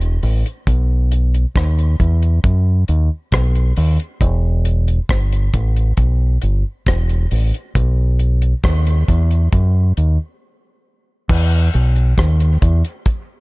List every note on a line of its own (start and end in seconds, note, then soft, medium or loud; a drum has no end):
0.00 0.17 E1 medium
0.00 closed hi-hat soft
0.23 0.43 A1 medium
0.23 open hi-hat medium
0.46 closed hi-hat medium
0.67 1.44 B1 medium
0.67 kick medium
0.67 closed hi-hat medium
1.12 closed hi-hat medium
1.34 closed hi-hat soft
1.56 1.94 D#2 medium
1.56 kick loud
1.56 cross-stick loud
1.56 closed hi-hat medium
1.79 closed hi-hat soft
2.00 2.39 E2 medium
2.00 kick medium
2.00 closed hi-hat medium
2.23 closed hi-hat soft
2.44 2.83 F#2 medium
2.44 kick loud
2.44 closed hi-hat medium
2.88 3.08 D#2 medium
2.88 closed hi-hat medium
3.32 3.71 B1 medium
3.32 kick medium
3.32 cross-stick loud
3.32 closed hi-hat medium
3.55 closed hi-hat soft
3.77 3.97 D#2 medium
3.77 open hi-hat medium
4.00 closed hi-hat medium
4.21 4.98 E1 loud
4.21 kick medium
4.21 closed hi-hat medium
4.65 closed hi-hat medium
4.88 closed hi-hat medium
5.09 5.48 G1 medium
5.09 kick loud
5.09 cross-stick loud
5.09 closed hi-hat medium
5.32 closed hi-hat medium
5.54 5.93 A1 medium
5.54 kick medium
5.54 closed hi-hat medium
5.76 closed hi-hat soft
5.97 6.37 B1 medium
5.97 kick loud
5.97 closed hi-hat medium
6.42 6.63 G1 medium
6.42 closed hi-hat medium
6.86 7.25 E1 medium
6.86 kick loud
6.86 cross-stick loud
6.86 closed hi-hat medium
7.09 closed hi-hat soft
7.31 7.51 A1 medium
7.31 open hi-hat medium
7.54 closed hi-hat soft
7.75 8.53 B1 loud
7.75 kick loud
7.75 closed hi-hat medium
8.19 closed hi-hat medium
8.42 closed hi-hat medium
8.64 9.02 D#2 medium
8.64 kick loud
8.64 cross-stick loud
8.64 closed hi-hat medium
8.87 closed hi-hat medium
9.08 9.47 E2 medium
9.08 kick medium
9.08 closed hi-hat medium
9.31 closed hi-hat soft
9.53 9.91 F#2 medium
9.53 kick loud
9.53 closed hi-hat medium
9.97 10.17 D#2 medium
9.97 closed hi-hat medium
11.29 11.68 E2 loud
11.29 kick loud
11.29 crash loud
11.74 12.13 B1 medium
11.74 closed hi-hat medium
11.96 closed hi-hat medium
12.18 12.56 D#2 loud
12.18 kick loud
12.18 cross-stick loud
12.18 closed hi-hat medium
12.40 closed hi-hat medium
12.62 12.82 E2 medium
12.62 kick medium
12.62 closed hi-hat medium
12.85 closed hi-hat medium
13.06 kick loud
13.06 closed hi-hat medium